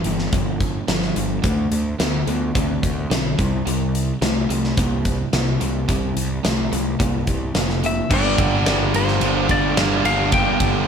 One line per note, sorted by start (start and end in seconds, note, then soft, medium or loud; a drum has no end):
0.04 0.28 G1 medium
0.04 0.31 G2 medium
0.04 0.31 E3 medium
0.04 closed hi-hat medium
0.19 snare soft
0.33 0.77 G1 medium
0.33 0.83 G2 medium
0.33 0.84 F3 medium
0.33 kick loud
0.33 closed hi-hat medium
0.60 kick medium
0.60 closed hi-hat medium
0.88 1.11 G1 medium
0.88 1.14 G2 medium
0.88 1.14 F3 medium
0.88 snare loud
0.88 closed hi-hat medium
1.02 snare soft
1.16 1.38 G1 medium
1.16 1.42 G2 medium
1.16 1.42 F3 medium
1.16 closed hi-hat medium
1.44 1.66 D2 medium
1.44 1.95 D3 medium
1.44 1.95 A3 medium
1.44 kick loud
1.44 closed hi-hat medium
1.71 1.94 D2 medium
1.71 closed hi-hat medium
2.00 2.22 D2 medium
2.00 2.25 D3 medium
2.00 2.26 B3 loud
2.00 snare loud
2.00 closed hi-hat medium
2.27 2.50 D2 medium
2.27 2.53 D3 medium
2.27 2.53 B3 medium
2.27 closed hi-hat medium
2.55 2.78 D2 medium
2.55 3.05 D3 medium
2.55 3.06 C4 medium
2.55 kick loud
2.55 closed hi-hat medium
2.83 3.06 D2 medium
2.83 kick medium
2.83 closed hi-hat medium
3.10 3.33 B1 medium
3.10 3.36 D3 medium
3.10 3.36 C4 medium
3.10 snare loud
3.10 closed hi-hat medium
3.39 3.61 C2 medium
3.39 3.64 C3 medium
3.39 3.64 G3 medium
3.39 kick loud
3.39 closed hi-hat medium
3.66 4.11 C2 medium
3.66 4.17 C3 medium
3.66 4.17 G3 medium
3.66 closed hi-hat medium
3.95 closed hi-hat medium
4.21 4.44 C2 medium
4.21 4.47 C3 medium
4.21 4.47 A3 loud
4.21 snare loud
4.21 closed hi-hat medium
4.50 4.72 C2 medium
4.50 4.75 C3 medium
4.50 4.75 A3 medium
4.50 closed hi-hat medium
4.64 snare soft
4.77 5.22 C2 medium
4.77 5.28 C3 medium
4.77 5.28 A#3 medium
4.77 kick loud
4.77 closed hi-hat medium
5.05 kick medium
5.05 closed hi-hat medium
5.33 5.56 C2 medium
5.33 5.58 C3 medium
5.33 5.59 A#3 medium
5.33 snare loud
5.33 closed hi-hat medium
5.61 5.84 C2 medium
5.61 5.87 C3 medium
5.61 5.87 A#3 medium
5.61 closed hi-hat medium
5.89 6.11 C2 medium
5.89 6.39 C3 medium
5.89 6.39 G3 medium
5.89 kick medium
5.89 closed hi-hat medium
6.17 6.39 C2 medium
6.17 closed hi-hat medium
6.45 6.67 C2 medium
6.45 6.70 C3 medium
6.45 6.70 A3 medium
6.45 snare loud
6.45 closed hi-hat medium
6.72 6.95 C2 medium
6.72 6.97 C3 medium
6.72 6.97 A3 medium
6.72 closed hi-hat medium
7.00 7.22 C2 medium
7.00 7.50 C3 medium
7.00 7.50 A#3 medium
7.00 kick loud
7.00 closed hi-hat medium
7.27 7.50 C2 medium
7.27 kick medium
7.27 closed hi-hat medium
7.55 8.00 F1 medium
7.55 7.81 C3 medium
7.55 7.81 A#3 medium
7.55 snare loud
7.55 closed hi-hat medium
7.70 snare soft
7.83 8.08 C3 medium
7.83 8.08 A#3 medium
7.83 8.13 E5 medium
7.83 closed hi-hat medium
8.10 8.36 G1 medium
8.10 9.20 G2 medium
8.10 9.20 D3 medium
8.10 9.22 G3 medium
8.10 9.23 A#3 loud
8.10 9.24 D4 medium
8.10 kick loud
8.10 crash loud
8.14 8.92 D5 loud
8.38 8.63 G1 medium
8.38 9.21 D3 medium
8.38 kick loud
8.38 ride medium
8.66 8.92 G1 loud
8.66 9.49 G3 medium
8.66 snare loud
8.66 ride medium
8.94 9.19 G1 medium
8.94 9.76 A#3 medium
8.94 9.51 C5 medium
8.94 ride medium
9.08 snare soft
9.20 9.46 G1 medium
9.20 10.30 G2 medium
9.20 10.31 D3 medium
9.20 10.31 G3 medium
9.20 10.32 A#3 medium
9.20 10.32 D4 medium
9.20 ride loud
9.48 9.74 G1 medium
9.48 9.74 G2 medium
9.48 9.76 D3 medium
9.48 9.75 G3 medium
9.48 10.87 G3 medium
9.48 10.07 D5 loud
9.48 kick medium
9.48 ride medium
9.75 10.02 G1 medium
9.75 10.29 G2 medium
9.75 10.31 D3 medium
9.75 10.32 G3 medium
9.75 10.88 A#3 medium
9.75 snare loud
9.75 ride loud
10.04 10.29 G1 medium
10.04 10.88 D4 medium
10.04 10.33 F5 loud
10.04 ride medium
10.32 10.57 G1 medium
10.32 10.88 G2 medium
10.32 10.88 D3 medium
10.32 10.88 G3 loud
10.32 10.88 A#3 medium
10.32 10.88 D4 loud
10.32 10.88 G5 loud
10.32 kick loud
10.32 ride medium
10.60 10.85 G1 medium
10.60 10.88 D3 medium
10.60 kick medium
10.60 ride medium